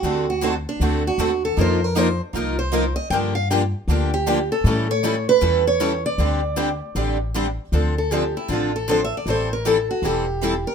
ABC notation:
X:1
M:4/4
L:1/16
Q:"Swing" 1/4=156
K:Dphr
V:1 name="Steel-string acoustic guitar"
^F2 F2 E2 D4 F4 A2 | c2 B2 c2 z4 c4 e2 | g2 f2 g2 z4 G4 A2- | A2 ^c4 =B4 c4 d2- |
d12 z4 | [K:Dm] z2 A2 G2 E2 F2 A2 (3c2 e2 d2 | c2 B2 A2 ^F2 G6 B2 |]
V:2 name="Steel-string acoustic guitar"
[D,A,C^FA]2 z2 [D,A,CFA] z3 [D,A,CFA]2 z2 [D,A,CFA] z3 | [F,B,EFB]2 z2 [F,B,EFB] z3 [F,B,EFB]2 z2 [F,B,EFB] z3 | [D,F,B,DG]2 z2 [D,F,B,DG] z3 [D,F,B,DG]2 z2 [D,F,B,DG] z3 | [=E,G,^C=EA]2 z2 [E,G,CEA] z3 [E,G,CEA]2 z2 [E,G,CEA] z3 |
[D,G,CDG]2 z2 [D,G,CDG] z3 [D,G,CDG]2 z2 [D,G,CDG] z3 | [K:Dm] [D,F,CDA]2 z2 [D,F,CDA] z3 [D,F,CDA]2 z2 [D,F,CDA] z3 | [E,G,CEA]2 z2 [E,G,CEA] z3 [E,G,CEA]2 z2 [E,G,CEA] z3 |]
V:3 name="Steel-string acoustic guitar"
[D,A,C^FA]2 z2 [D,A,CFA] z3 [D,A,CFA]2 z2 [D,A,CFA] z3 | [F,B,EFB]2 z2 [F,B,EFB] z3 [F,B,EFB]2 z2 [F,B,EFB] z3 | [D,F,B,DG]2 z2 [D,F,B,DG] z3 [D,F,B,DG]2 z2 [D,F,B,DG] z3 | [=E,G,^C=EA]2 z2 [E,G,CEA] z3 [E,G,CEA]2 z2 [E,G,CEA] z3 |
[D,G,CDG]2 z2 [D,G,CDG] z3 [D,G,CDG]2 z2 [D,G,CDG] z3 | [K:Dm] [D,F,CDA]2 z2 [D,F,CDA] z3 [D,F,CDA]2 z2 [D,F,CDA] z3 | [E,G,CEA]2 z2 [E,G,CEA] z3 [E,G,CEA]2 z2 [E,G,CEA] z3 |]
V:4 name="Upright bass" clef=bass
D,,8 D,,4 E,,4 | F,,8 C,,8 | G,,8 D,,8 | A,,8 =E,,8 |
D,,8 A,,,8 | [K:Dm] D,,8 A,,,8 | A,,,8 E,,,8 |]